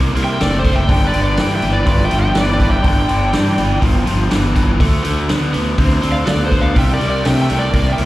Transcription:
Already playing: C2 C3 A#3
0.15 C2 C3 A#3, open hi-hat
0.24 E5 G5
0.40 F#1 C3 A3 A#4 D5, snare, open hi-hat
0.58 A4 C5
0.64 C3 A3, kick, open hi-hat
0.72 E5 G5
0.88 G1 G2 D3 D5, kick, open hi-hat
0.92 G5
1.05 B4 D5
1.13 G1 G2 D3, open hi-hat
1.22 B4 D5
1.37 G2 E3 D5 G5, snare, open hi-hat
1.55 E5 G5
1.62 G1 G2 E3, open hi-hat
1.72 B4 D5
1.86 G1 G2 F3 B4 D5, kick, open hi-hat
2.04 E5 G5
2.10 G1 G2 F3, open hi-hat
2.20 E5 G5
2.35 G1 G2 E3 B4 D5, snare, open hi-hat
2.52 B4 D5
2.60 G2 E3, kick, open hi-hat
2.68 E5 G5
2.82 G1 G2 D3 D5, kick, open hi-hat
2.88 G5
3.08 G1 G2 D3, open hi-hat
3.32 G2 E3, snare, open hi-hat
3.57 G1 G2 E3, open hi-hat
3.81 G1 G2 F3, kick, open hi-hat
4.06 G1 G2 F3, open hi-hat
4.31 G1 G2 E3, snare, open hi-hat
4.55 G2 E3, kick, open hi-hat
4.80 D2 D3 A3, kick, open hi-hat
5.04 D2 D3 A3, open hi-hat
5.29 D3 B3, snare, open hi-hat
5.53 D2 D3 B3, open hi-hat
5.78 D2 D3 C4, kick, open hi-hat
6.02 D2 D3 C4, open hi-hat
6.11 D5 F5
6.26 D2 D3 B3 A4 D5, snare, open hi-hat
6.45 A4 C5
6.51 D3 B3, kick, open hi-hat
6.60 D5 F5
6.76 C2 C3 G3 E5 G5, kick, open hi-hat
6.93 A#4 D5
6.99 C2 C3 G3, open hi-hat
7.09 A#4 D5
7.23 C3 A3 E5 G5, snare, open hi-hat
7.41 E5 G5
7.48 C2 C3 A3, open hi-hat
7.57 A#4 D5
7.72 C2 C3 A#3 A#4 D5, kick, open hi-hat
7.88 E5 G5
7.98 C2 C3 A#3, open hi-hat

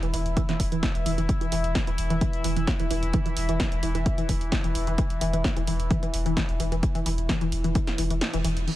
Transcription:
Already playing: E3 E4
0.03 E1 E3, closed hi-hat
0.14 E1 E3, open hi-hat
0.26 E1, closed hi-hat
0.37 E3, kick, closed hi-hat
0.49 E3, snare, closed hi-hat
0.60 E1, kick, open hi-hat
0.72 E1 E3, closed hi-hat
0.83 E3, kick, snare, closed hi-hat
0.95 E1, closed hi-hat
1.06 E1 E3, open hi-hat
1.18 E1 E3, closed hi-hat
1.29 kick, closed hi-hat
1.41 E3, closed hi-hat
1.52 E1 E3, open hi-hat
1.64 E1, closed hi-hat
1.75 E3, kick, snare, closed hi-hat
1.87 E1 E3, closed hi-hat
1.98 E1, open hi-hat
2.10 E1 E3, closed hi-hat
2.21 E3, kick, closed hi-hat
2.33 closed hi-hat
2.44 E1 E3, open hi-hat
2.56 E1 E3, closed hi-hat
2.67 kick, snare, closed hi-hat
2.80 E1 E3, closed hi-hat
2.91 E1 E3, open hi-hat
3.03 E1, closed hi-hat
3.13 E3, kick, closed hi-hat
3.26 E3, closed hi-hat
3.37 E1, open hi-hat
3.49 E1 E3, closed hi-hat
3.60 E3, kick, snare, closed hi-hat
3.72 E1, closed hi-hat
3.83 E1 E3, open hi-hat
3.95 E1 E3, closed hi-hat
4.06 kick, closed hi-hat
4.18 E3, closed hi-hat
4.29 E1 E3, kick, open hi-hat
4.41 E1, closed hi-hat
4.52 E3, kick, snare, closed hi-hat
4.64 E1 E3, closed hi-hat
4.75 E1, open hi-hat
4.87 E1 E3, closed hi-hat
4.98 E3, kick, closed hi-hat
5.10 closed hi-hat
5.21 E1 E3, open hi-hat
5.33 E1 E3, closed hi-hat
5.44 kick, snare, closed hi-hat
5.57 E1 E3, closed hi-hat
5.67 E1 E3, open hi-hat
5.80 E1, closed hi-hat
5.91 E3, kick, closed hi-hat
6.03 E3, closed hi-hat
6.14 E1, open hi-hat
6.26 E1 E3, closed hi-hat
6.37 E3, kick, snare, closed hi-hat
6.49 E1, closed hi-hat
6.60 E1 E3, open hi-hat
6.72 E1 E3, closed hi-hat
6.83 kick, closed hi-hat
6.95 E3, closed hi-hat
7.06 E1 E3, open hi-hat
7.18 E1, closed hi-hat
7.29 E3, kick, snare, closed hi-hat
7.41 E1 E3, closed hi-hat
7.52 E1, open hi-hat
7.64 E1 E3, closed hi-hat
7.75 E3, kick, closed hi-hat
7.87 snare, closed hi-hat
7.98 E1 E3, open hi-hat
8.10 E1 E3, closed hi-hat
8.21 snare, closed hi-hat
8.34 E1 E3, closed hi-hat
8.44 E1 E3, open hi-hat
8.57 E1, closed hi-hat
8.67 E3 E4, crash

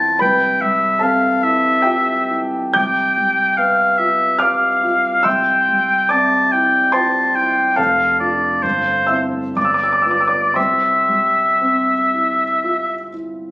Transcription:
Already playing: E2 G3 C4 E4 F4 C5 G5 A5 C6
0.19 C2 B4 G5 B5
0.61 G3 E5
0.99 C4 A4 F5 A5
1.43 E4 E5
1.82 F4 G4 E5 G5
2.30 E4
2.73 C2 G5 D6 G6
3.18 G3
3.57 B3 F5
3.98 F4 E5
4.39 G4 F5 D6 F6
4.83 F4
5.23 C2 E5 G5 C6 E6
5.69 G3
6.09 C4 D5 A5 D6
6.52 E4 G5
6.92 F4 C5 G5 A5 C6
7.35 E4 G5
7.76 F1 A4 F5 A5
8.20 D4 F4 D5
8.63 G1 C5
9.07 C4 E4 E5 E6
9.56 G1 D5 D6
9.65 E6
9.74 D6
9.84 E6
9.93 D6
10.02 B3 E6
10.06 F4
10.11 D6
10.21 E6
10.28 D5 D6
10.54 C2 C5 E5 G5 C6
11.09 G3
11.61 C4
12.14 E4
12.64 F4
13.14 E4

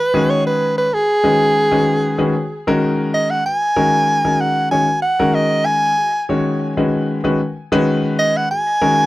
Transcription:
Already playing: B4
0.14 D#3 G#3 C#4 F#4 G#4
0.30 C#5
0.47 B4
0.78 B4
0.92 F#4 G#4 A#4
1.24 D#3 G#3 C#4 F#4 B4
1.71 D#3 G#3 C#4 F#4 B4
2.18 D#3 G#3 C#4 F#4 B4
2.36 F#4 C#5
2.67 D#3 G#3 C#4 F#4 A#4
3.14 D#5
3.30 F#5
3.46 F#4 B4 G#5
3.76 D#3 G#3 C#4 F#4 A#4
4.25 D#3 G#3 C#4 F#4 A#4
4.41 F#5
4.71 D#3 G#3 C#4 F#4 C#5 G#5
4.88 F#4 A#4
5.02 F#5
5.19 D#3 G#3 C#4 F#4 A#4
5.35 D#5
5.65 G#5
5.98 F#4 G#4
6.29 D#3 G#3 C#4 F#4 C#5
6.77 D#3 G#3 C#4 F#4 B4
7.24 D#3 G#3 C#4 F#4 B4
7.41 F#4 A#4
7.72 D#3 G#3 C#4 F#4 B4
8.19 D#5
8.37 F#5
8.51 F#4 G#4 G#5
8.82 D#3 G#3 C#4 F#4 A#4

